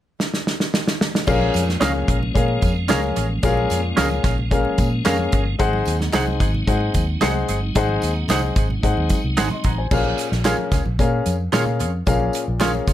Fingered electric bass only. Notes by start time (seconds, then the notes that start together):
1.28 A#1
1.55 F2
1.82 C#2
2.08 A#1
2.36 A#2
2.63 F2
2.90 C#2
3.17 A1
3.43 A#1
3.71 F2
3.98 C#2
4.24 A#1
4.79 A#2
5.06 F2
5.33 G1
5.60 G#1
5.87 D#2
6.14 C2
6.40 G#1
6.68 G#2
6.95 D#2
7.22 C2
7.49 G1
7.76 G#1
8.03 D#2
8.29 C2
8.56 G#1
8.83 G#2
8.98 D#2
9.24 C2
9.38 G#1
9.65 A1
9.91 A#1
10.32 A#1
10.72 C#2
10.86 A#1
10.99 A#2
11.26 F2
11.53 A#2
11.80 F2
12.07 A#1
12.48 A#1
12.88 C#2